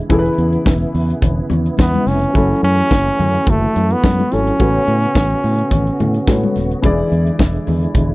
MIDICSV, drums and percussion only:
0, 0, Header, 1, 2, 480
1, 0, Start_track
1, 0, Key_signature, 3, "minor"
1, 0, Tempo, 560748
1, 86, Time_signature, 4, 2, 24, 8
1, 6972, End_track
2, 0, Start_track
2, 0, Title_t, "Drums"
2, 85, Note_on_c, 9, 36, 100
2, 85, Note_on_c, 9, 42, 61
2, 89, Note_on_c, 9, 62, 66
2, 171, Note_off_c, 9, 36, 0
2, 171, Note_off_c, 9, 42, 0
2, 175, Note_off_c, 9, 62, 0
2, 217, Note_on_c, 9, 42, 37
2, 303, Note_off_c, 9, 42, 0
2, 325, Note_on_c, 9, 42, 51
2, 411, Note_off_c, 9, 42, 0
2, 449, Note_on_c, 9, 42, 43
2, 535, Note_off_c, 9, 42, 0
2, 562, Note_on_c, 9, 63, 68
2, 565, Note_on_c, 9, 36, 105
2, 573, Note_on_c, 9, 38, 117
2, 648, Note_off_c, 9, 63, 0
2, 651, Note_off_c, 9, 36, 0
2, 658, Note_off_c, 9, 38, 0
2, 697, Note_on_c, 9, 42, 34
2, 783, Note_off_c, 9, 42, 0
2, 810, Note_on_c, 9, 46, 68
2, 896, Note_off_c, 9, 46, 0
2, 943, Note_on_c, 9, 42, 47
2, 1029, Note_off_c, 9, 42, 0
2, 1046, Note_on_c, 9, 36, 99
2, 1050, Note_on_c, 9, 64, 69
2, 1055, Note_on_c, 9, 42, 94
2, 1132, Note_off_c, 9, 36, 0
2, 1136, Note_off_c, 9, 64, 0
2, 1140, Note_off_c, 9, 42, 0
2, 1282, Note_on_c, 9, 62, 58
2, 1282, Note_on_c, 9, 64, 84
2, 1294, Note_on_c, 9, 42, 55
2, 1368, Note_off_c, 9, 62, 0
2, 1368, Note_off_c, 9, 64, 0
2, 1379, Note_off_c, 9, 42, 0
2, 1419, Note_on_c, 9, 42, 46
2, 1505, Note_off_c, 9, 42, 0
2, 1519, Note_on_c, 9, 63, 65
2, 1530, Note_on_c, 9, 36, 110
2, 1538, Note_on_c, 9, 38, 103
2, 1604, Note_off_c, 9, 63, 0
2, 1616, Note_off_c, 9, 36, 0
2, 1623, Note_off_c, 9, 38, 0
2, 1661, Note_on_c, 9, 42, 36
2, 1661, Note_on_c, 9, 63, 70
2, 1746, Note_off_c, 9, 42, 0
2, 1747, Note_off_c, 9, 63, 0
2, 1768, Note_on_c, 9, 46, 73
2, 1774, Note_on_c, 9, 38, 37
2, 1854, Note_off_c, 9, 46, 0
2, 1860, Note_off_c, 9, 38, 0
2, 1898, Note_on_c, 9, 42, 51
2, 1984, Note_off_c, 9, 42, 0
2, 2010, Note_on_c, 9, 42, 67
2, 2012, Note_on_c, 9, 36, 98
2, 2016, Note_on_c, 9, 62, 60
2, 2096, Note_off_c, 9, 42, 0
2, 2097, Note_off_c, 9, 36, 0
2, 2102, Note_off_c, 9, 62, 0
2, 2259, Note_on_c, 9, 42, 46
2, 2345, Note_off_c, 9, 42, 0
2, 2378, Note_on_c, 9, 42, 42
2, 2464, Note_off_c, 9, 42, 0
2, 2489, Note_on_c, 9, 63, 67
2, 2491, Note_on_c, 9, 36, 104
2, 2497, Note_on_c, 9, 38, 116
2, 2575, Note_off_c, 9, 63, 0
2, 2577, Note_off_c, 9, 36, 0
2, 2583, Note_off_c, 9, 38, 0
2, 2734, Note_on_c, 9, 46, 66
2, 2740, Note_on_c, 9, 64, 69
2, 2820, Note_off_c, 9, 46, 0
2, 2825, Note_off_c, 9, 64, 0
2, 2861, Note_on_c, 9, 42, 41
2, 2947, Note_off_c, 9, 42, 0
2, 2969, Note_on_c, 9, 36, 109
2, 2969, Note_on_c, 9, 42, 82
2, 2991, Note_on_c, 9, 64, 73
2, 3054, Note_off_c, 9, 42, 0
2, 3055, Note_off_c, 9, 36, 0
2, 3077, Note_off_c, 9, 64, 0
2, 3218, Note_on_c, 9, 42, 61
2, 3230, Note_on_c, 9, 62, 59
2, 3303, Note_off_c, 9, 42, 0
2, 3315, Note_off_c, 9, 62, 0
2, 3340, Note_on_c, 9, 42, 41
2, 3425, Note_off_c, 9, 42, 0
2, 3455, Note_on_c, 9, 36, 112
2, 3457, Note_on_c, 9, 63, 67
2, 3460, Note_on_c, 9, 38, 115
2, 3541, Note_off_c, 9, 36, 0
2, 3542, Note_off_c, 9, 63, 0
2, 3545, Note_off_c, 9, 38, 0
2, 3588, Note_on_c, 9, 42, 35
2, 3593, Note_on_c, 9, 63, 78
2, 3673, Note_off_c, 9, 42, 0
2, 3678, Note_off_c, 9, 63, 0
2, 3694, Note_on_c, 9, 42, 74
2, 3700, Note_on_c, 9, 38, 35
2, 3780, Note_off_c, 9, 42, 0
2, 3786, Note_off_c, 9, 38, 0
2, 3825, Note_on_c, 9, 42, 50
2, 3911, Note_off_c, 9, 42, 0
2, 3936, Note_on_c, 9, 36, 102
2, 3936, Note_on_c, 9, 42, 73
2, 3945, Note_on_c, 9, 62, 55
2, 4021, Note_off_c, 9, 36, 0
2, 4022, Note_off_c, 9, 42, 0
2, 4031, Note_off_c, 9, 62, 0
2, 4175, Note_on_c, 9, 42, 46
2, 4261, Note_off_c, 9, 42, 0
2, 4295, Note_on_c, 9, 42, 41
2, 4380, Note_off_c, 9, 42, 0
2, 4406, Note_on_c, 9, 63, 62
2, 4411, Note_on_c, 9, 36, 108
2, 4418, Note_on_c, 9, 38, 116
2, 4492, Note_off_c, 9, 63, 0
2, 4497, Note_off_c, 9, 36, 0
2, 4503, Note_off_c, 9, 38, 0
2, 4537, Note_on_c, 9, 42, 33
2, 4623, Note_off_c, 9, 42, 0
2, 4651, Note_on_c, 9, 46, 69
2, 4737, Note_off_c, 9, 46, 0
2, 4779, Note_on_c, 9, 42, 45
2, 4865, Note_off_c, 9, 42, 0
2, 4889, Note_on_c, 9, 36, 98
2, 4894, Note_on_c, 9, 42, 90
2, 4901, Note_on_c, 9, 64, 75
2, 4975, Note_off_c, 9, 36, 0
2, 4980, Note_off_c, 9, 42, 0
2, 4987, Note_off_c, 9, 64, 0
2, 5020, Note_on_c, 9, 42, 33
2, 5106, Note_off_c, 9, 42, 0
2, 5135, Note_on_c, 9, 42, 56
2, 5139, Note_on_c, 9, 62, 61
2, 5139, Note_on_c, 9, 64, 81
2, 5221, Note_off_c, 9, 42, 0
2, 5225, Note_off_c, 9, 62, 0
2, 5225, Note_off_c, 9, 64, 0
2, 5256, Note_on_c, 9, 42, 50
2, 5342, Note_off_c, 9, 42, 0
2, 5371, Note_on_c, 9, 36, 112
2, 5374, Note_on_c, 9, 63, 62
2, 5375, Note_on_c, 9, 38, 110
2, 5457, Note_off_c, 9, 36, 0
2, 5459, Note_off_c, 9, 63, 0
2, 5460, Note_off_c, 9, 38, 0
2, 5508, Note_on_c, 9, 63, 73
2, 5594, Note_off_c, 9, 63, 0
2, 5611, Note_on_c, 9, 42, 66
2, 5617, Note_on_c, 9, 38, 40
2, 5697, Note_off_c, 9, 42, 0
2, 5703, Note_off_c, 9, 38, 0
2, 5744, Note_on_c, 9, 42, 49
2, 5830, Note_off_c, 9, 42, 0
2, 5852, Note_on_c, 9, 36, 98
2, 5852, Note_on_c, 9, 42, 67
2, 5864, Note_on_c, 9, 62, 59
2, 5937, Note_off_c, 9, 36, 0
2, 5938, Note_off_c, 9, 42, 0
2, 5950, Note_off_c, 9, 62, 0
2, 6100, Note_on_c, 9, 42, 49
2, 6186, Note_off_c, 9, 42, 0
2, 6218, Note_on_c, 9, 42, 36
2, 6303, Note_off_c, 9, 42, 0
2, 6327, Note_on_c, 9, 63, 69
2, 6329, Note_on_c, 9, 36, 93
2, 6337, Note_on_c, 9, 38, 106
2, 6413, Note_off_c, 9, 63, 0
2, 6414, Note_off_c, 9, 36, 0
2, 6423, Note_off_c, 9, 38, 0
2, 6566, Note_on_c, 9, 46, 65
2, 6567, Note_on_c, 9, 64, 70
2, 6651, Note_off_c, 9, 46, 0
2, 6652, Note_off_c, 9, 64, 0
2, 6699, Note_on_c, 9, 42, 42
2, 6784, Note_off_c, 9, 42, 0
2, 6802, Note_on_c, 9, 42, 83
2, 6803, Note_on_c, 9, 36, 103
2, 6822, Note_on_c, 9, 64, 73
2, 6887, Note_off_c, 9, 42, 0
2, 6889, Note_off_c, 9, 36, 0
2, 6908, Note_off_c, 9, 64, 0
2, 6972, End_track
0, 0, End_of_file